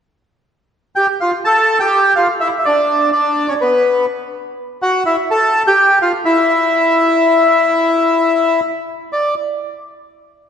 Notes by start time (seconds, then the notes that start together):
0.96 G4 G5
1.20 F4 F5
1.45 A4 A5
1.80 G4 G5
2.16 F4 F5
2.40 E4 E5
2.59 E5
2.65 D4 D5
3.12 D4 D5
3.48 C#4 C#5
3.61 B3 B4
4.82 F#4 F#5
5.06 E4 E5
5.31 A4 A5
5.67 G4 G5
6.02 F4 F5
6.25 E4 E5
9.13 D5